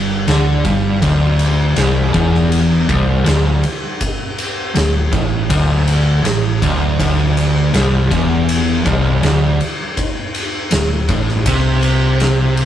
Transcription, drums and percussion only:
0.28 snare loud
0.28 ride medium
0.65 kick loud
0.65 ride medium
1.02 kick loud
1.02 ride medium
1.39 ride medium
1.76 snare loud
1.76 ride medium
2.14 kick loud
2.14 ride medium
2.34 snare soft
2.52 ride medium
2.89 kick loud
2.89 ride medium
3.26 snare loud
3.26 ride medium
3.63 ride medium
4.01 kick medium
4.01 ride medium
4.39 ride medium
4.76 snare loud
4.76 ride loud
5.13 kick loud
5.13 ride medium
5.50 kick loud
5.50 ride loud
5.88 ride medium
6.25 snare loud
6.25 ride medium
6.62 kick loud
6.62 ride medium
7.00 kick medium
7.00 ride medium
7.37 ride medium
7.74 snare loud
7.74 ride medium
8.11 kick loud
8.11 ride medium
8.49 ride loud
8.86 kick loud
8.86 ride medium
9.23 snare loud
9.23 ride medium
9.61 ride medium
9.97 kick medium
9.97 ride medium
10.35 ride medium
10.71 snare loud
10.71 ride loud
11.09 kick medium
11.09 ride medium
11.29 snare soft
11.46 kick loud
11.46 ride loud
11.83 ride medium
12.20 snare medium
12.20 ride medium
12.57 ride medium

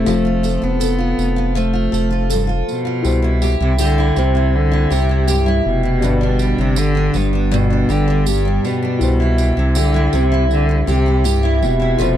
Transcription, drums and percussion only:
0.06 tambourine soft
0.44 tambourine medium
0.81 tambourine medium
1.19 tambourine soft
1.56 tambourine soft
1.94 tambourine soft
2.30 tambourine medium
2.69 tambourine soft
3.05 tambourine soft
3.42 tambourine medium
3.79 tambourine medium
4.16 tambourine soft
4.92 tambourine soft
5.28 tambourine medium
6.03 tambourine soft
6.39 tambourine medium
6.76 tambourine medium
7.14 tambourine soft
7.52 tambourine soft
7.90 tambourine soft
8.27 tambourine medium
8.65 tambourine soft
9.01 tambourine soft
9.38 tambourine soft
9.75 tambourine medium
10.13 tambourine soft
10.51 tambourine soft
10.88 tambourine soft
11.25 tambourine medium
11.63 tambourine soft
11.99 tambourine soft

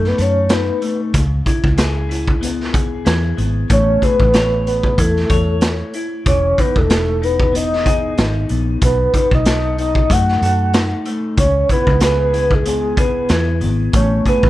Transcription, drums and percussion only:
0.04 snare soft
0.18 closed hi-hat medium
0.49 snare loud
0.49 closed hi-hat medium
0.82 closed hi-hat medium
1.14 kick loud
1.14 closed hi-hat medium
1.46 kick medium
1.46 closed hi-hat medium
1.64 kick loud
1.78 snare loud
1.78 closed hi-hat medium
2.11 closed hi-hat medium
2.28 kick medium
2.43 closed hi-hat medium
2.60 snare soft
2.74 kick medium
2.74 closed hi-hat medium
3.06 snare loud
3.06 closed hi-hat medium
3.38 closed hi-hat medium
3.70 kick medium
3.70 closed hi-hat medium
4.02 kick medium
4.02 closed hi-hat medium
4.20 kick medium
4.34 snare loud
4.34 closed hi-hat medium
4.67 closed hi-hat medium
4.83 kick medium
4.98 kick medium
4.98 closed hi-hat medium
5.16 snare soft
5.30 kick medium
5.30 closed hi-hat medium
5.61 snare loud
5.61 closed hi-hat medium
5.94 closed hi-hat medium
6.26 kick loud
6.26 closed hi-hat medium
6.58 kick medium
6.58 closed hi-hat medium
6.76 kick medium
6.90 snare loud
6.90 closed hi-hat medium
7.23 closed hi-hat medium
7.40 kick medium
7.55 closed hi-hat medium
7.73 snare soft
7.86 kick medium
7.86 closed hi-hat medium
8.18 snare loud
8.18 closed hi-hat medium
8.49 closed hi-hat medium
8.82 kick loud
8.82 closed hi-hat medium
9.14 kick medium
9.14 closed hi-hat medium
9.31 kick medium
9.46 snare loud
9.46 closed hi-hat medium
9.78 closed hi-hat medium
9.95 kick medium
10.10 kick loud
10.10 closed hi-hat medium
10.28 snare soft
10.42 closed hi-hat medium
10.74 snare loud
10.74 closed hi-hat medium
11.06 closed hi-hat medium
11.38 kick loud
11.38 closed hi-hat medium
11.69 kick medium
11.69 closed hi-hat medium
11.87 kick medium
12.00 snare loud
12.00 closed hi-hat loud
12.34 closed hi-hat medium
12.51 kick medium
12.66 closed hi-hat medium
12.97 kick medium
12.97 closed hi-hat medium
13.29 snare loud
13.29 closed hi-hat medium
13.61 closed hi-hat medium
13.93 kick loud
13.93 closed hi-hat medium
14.26 kick medium
14.26 closed hi-hat medium
14.43 kick medium

